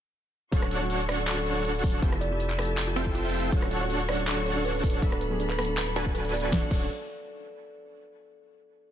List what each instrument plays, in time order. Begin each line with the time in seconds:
0.52 sub bass D1, felt piano F#3 A3 C#4 D4 A4, string section D4 F#4 C#6, supersaw synth D4 F#4 A4 C#5 F#5, kick, closed hi-hat
0.62 cross-stick
0.71 closed hi-hat
0.80 felt piano F#3 A3 C#4 D4 F#4
0.90 closed hi-hat
1.00 closed hi-hat
1.08 felt piano F#3 A3 C#4 D4 A4, kalimba D5, cross-stick, closed hi-hat
1.12 closed hi-hat
1.15 closed hi-hat
1.27 kalimba A4, clap, closed hi-hat
1.37 felt piano F#3 A3 C#4 D4 A4, kalimba A4
1.46 kalimba A4, closed hi-hat
1.55 felt piano F#3 A3 C#4 D4 A4
1.65 supersaw synth D4 F#4 A4 C#5 F#5, closed hi-hat
1.75 closed hi-hat
1.79 felt piano F#3, closed hi-hat
1.83 felt piano A3 C#4 D4 A4, kick, closed hi-hat, open hi-hat
1.90 closed hi-hat
2.02 sub bass F1, felt piano F3 A3 C4 E4 G4, supersaw synth C4 F4 A4 E5 G5, string section G4 E5 A5, kick, closed hi-hat
2.12 cross-stick
2.21 kalimba D5, closed hi-hat
2.30 felt piano F3 A3 C4 E4 G4
2.40 closed hi-hat
2.50 clap, closed hi-hat
2.58 felt piano F3 A3 C4 E4 G4, kalimba A4, cross-stick, closed hi-hat
2.62 closed hi-hat
2.65 kalimba A4, closed hi-hat
2.77 clap, closed hi-hat
2.86 felt piano F3 A3 C4 E4 G4, kalimba F4
2.96 supersaw synth C4 F4 A4 E5 G5, closed hi-hat
3.05 felt piano F3 A3 C4 E4 G4, kick
3.15 kalimba F4, closed hi-hat
3.25 closed hi-hat
3.29 felt piano F3 A3, closed hi-hat
3.34 felt piano C4 E4 G4, closed hi-hat, open hi-hat
3.40 closed hi-hat
3.51 sub bass D1, felt piano F#3 A3 C#4 D4 A4, string section D4 F#4 C#6, supersaw synth D4 F#4 C#5, synth arpeggio sound C#5, kick, closed hi-hat
3.62 synth arpeggio sound C#4, cross-stick
3.71 synth arpeggio sound D4, closed hi-hat
3.80 felt piano F#3 A3 C#4 D4 F#4, synth arpeggio sound C#5
3.90 synth arpeggio sound C#4, closed hi-hat
4.00 synth arpeggio sound D4, closed hi-hat
4.08 felt piano F#3 A3 C#4 D4 A4, synth arpeggio sound C#5, kalimba D5, cross-stick, closed hi-hat
4.12 closed hi-hat
4.15 synth arpeggio sound C#4, closed hi-hat
4.27 synth arpeggio sound D4, kalimba A4, clap, closed hi-hat
4.36 felt piano F#3 A3 C#4 D4 A4, kalimba A4, synth arpeggio sound C#5
4.46 synth arpeggio sound C#4, kalimba A4, closed hi-hat
4.55 felt piano F#3 A3 C#4 D4 A4, synth arpeggio sound D4
4.65 supersaw synth D4 F#4 A4 C#5 F#5, kalimba B4, synth arpeggio sound C#5, closed hi-hat
4.75 synth arpeggio sound C#4, closed hi-hat
4.79 felt piano F#3 A3, closed hi-hat
4.83 felt piano C#4 D4 A4, kick, closed hi-hat, open hi-hat
4.90 closed hi-hat
4.94 synth arpeggio sound C#5
5.01 sub bass D1, felt piano F#3 A3 B3 D4 A4, synth arpeggio sound B3, supersaw synth D4 F#4 A4 B4 E5, string section A4 B5, kick, closed hi-hat
5.12 synth arpeggio sound D4, kalimba A4, cross-stick
5.21 synth arpeggio sound B4, closed hi-hat
5.30 felt piano F#3 A3 B3 D4 G#4, synth arpeggio sound B3
5.40 synth arpeggio sound D4, closed hi-hat
5.50 synth arpeggio sound B4, clap, closed hi-hat
5.58 felt piano F#3 A3 B3 D4 A4, synth arpeggio sound B3, kalimba A4, cross-stick, closed hi-hat
5.62 closed hi-hat
5.65 synth arpeggio sound D4, closed hi-hat
5.77 synth arpeggio sound B4, clap, closed hi-hat
5.86 felt piano F#3 A3 B3 D4 A4, synth arpeggio sound B3
5.96 supersaw synth D4 F#4 A4 B4 G#5, synth arpeggio sound D4, closed hi-hat
6.05 felt piano F#3 A3 B3 D4 A4, synth arpeggio sound B4, kick
6.15 synth arpeggio sound B3, supersaw synth D4 F#4 A4 B4 G#5, kalimba A4, closed hi-hat
6.25 synth arpeggio sound D4, closed hi-hat
6.29 felt piano F#3 A3, closed hi-hat
6.33 felt piano B3 D4 A4, synth arpeggio sound B4, kalimba D5, closed hi-hat, open hi-hat
6.40 synth arpeggio sound B3, kalimba D5, closed hi-hat
6.49 sub bass D1, felt piano F#3 A3 C#4, synth arpeggio sound C#4, supersaw synth D4 F#4 F#5, string section D4 C#5 F#5, kick, snare
6.54 felt piano D4 A4
6.68 sub bass D1, felt piano F#3 A3 C#4, synth arpeggio sound C#4, supersaw synth D4 F#4 A4 C#5 F#5, kick, crash
6.73 felt piano D4 A4